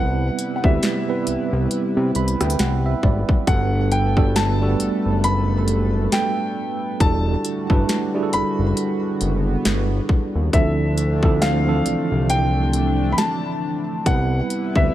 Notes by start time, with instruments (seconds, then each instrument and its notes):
Already playing: analog synth bass C2, analog synth pad C3 G3 E4 B4, tine electric piano G3 B3 C4 E4 B4, grand piano F#5
0.39 closed hi-hat
0.56 grand piano F#5
0.64 analog synth bass D2, tine electric piano G3 B3 C4 E4 G4, grand piano E5, kick
0.83 snare, closed hi-hat
1.08 tine electric piano G3 B3 C4 E4 B4
1.27 analog synth bass C2, closed hi-hat
1.53 analog synth bass C2
1.71 closed hi-hat
1.97 analog synth bass C3
2.15 analog synth bass C2, tine electric piano B5, closed hi-hat
2.28 closed hi-hat
2.41 analog synth bass D2, tine electric piano G5, cross-stick, closed hi-hat
2.50 closed hi-hat
2.59 analog synth bass C2, tine electric piano F#5, snare, closed hi-hat
2.86 tine electric piano E5
3.03 analog synth bass G#1, tine electric piano D5, kick
3.29 kick
3.47 analog synth bass G1, analog synth pad G3 A3 A4, tine electric piano G3 B3 D4 F#4 A4, grand piano F#5, kick, closed hi-hat
3.92 grand piano G5, closed hi-hat
4.17 tine electric piano G3 B3 D4 F#4 A4, kick, cross-stick
4.36 grand piano A5, snare, closed hi-hat
4.61 tine electric piano G3 A3 D4 F#4 A4
4.68 tine electric piano B3
4.80 analog synth bass F#1, closed hi-hat
5.05 analog synth bass F#1
5.24 grand piano B5, closed hi-hat
5.68 closed hi-hat
6.12 grand piano G5, snare, closed hi-hat
7.00 analog synth bass E1, analog synth pad D3 G3 F#4, tine electric piano G3 D4 E4 F#4 A4, grand piano A5, kick, closed hi-hat
7.45 closed hi-hat
7.70 analog synth bass G1, tine electric piano G3 D4 E4 F#4 B4, kick, cross-stick
7.89 snare, closed hi-hat
8.14 tine electric piano G3 D4 E4 F#4 G#4
8.23 tine electric piano A4
8.33 analog synth bass F#1, grand piano B5, closed hi-hat
8.59 analog synth bass F#1
8.77 analog synth pad B3, closed hi-hat
9.21 analog synth bass F#1, closed hi-hat
9.65 analog synth bass G1, snare, closed hi-hat
10.09 kick
10.35 analog synth bass D#2
10.53 analog synth bass D2, tine electric piano F3 C4 D4 E4 A4, analog synth pad A3 C4 D4, grand piano E5, kick, closed hi-hat
10.98 closed hi-hat
11.23 tine electric piano F3 C4 D4 E4 A4, kick, cross-stick
11.42 grand piano F5, snare, closed hi-hat
11.67 tine electric piano E3 F3 C4 D4 A4
11.86 analog synth bass C2, closed hi-hat
12.11 analog synth bass C2
12.30 analog synth pad D4, grand piano G5, closed hi-hat
12.73 closed hi-hat
13.12 grand piano B5
13.18 grand piano A5, snare, closed hi-hat
14.06 analog synth bass C2, analog synth pad C3 G3 E4 B4, tine electric piano G3 B3 C4 E4 B4, grand piano F#5, kick, closed hi-hat
14.50 closed hi-hat
14.76 analog synth bass D2, tine electric piano G3 B3 C4 E4 B4, grand piano E5, kick